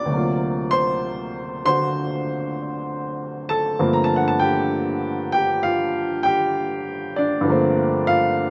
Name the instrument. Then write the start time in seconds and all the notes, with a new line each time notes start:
upright piano
Already playing: B2 B3 D4 E4 D5 D6
0.06 D2 C3
0.12 F#3 A#3
0.17 F4
0.71 C5 C6
1.65 D3 C4 F#4 C5 C6
3.49 A4 A5
3.79 G2 D3 F3 A3 A#3 C4
3.93 A#5
4.04 A5
4.16 F#5
4.28 A5
4.40 G4 G5
5.32 G4 G5
5.63 F4 F5
6.23 G4 G5
7.16 D4 D5
7.41 G2 D3
7.45 F3 A3
7.50 A#3 C4
8.07 F4 F5